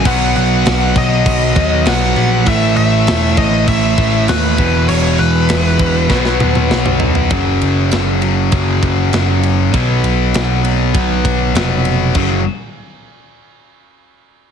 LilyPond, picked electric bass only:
\new Staff \with { instrumentName = "Picked electric bass" } { \clef bass \time 4/4 \key b \major \tempo 4 = 99 b,,8 b,,8 b,,8 b,,8 b,,8 dis,8 b,,8 ais,,8 | a,,8 a,,8 e,,8 a,,8 a,,8 a,,8 dis,8 e,,8 | e,,8 e,,8 e,,8 e,,8 b,,8 dis,8 b,,8 e,,8 | fis,,8 fis,,8 fis,,4 fis,,8 fis,,8 fis,,4 |
b,,8 b,,8 b,,4 b,,8 b,,8 eis,,4 | fis,,8 r2. r8 | }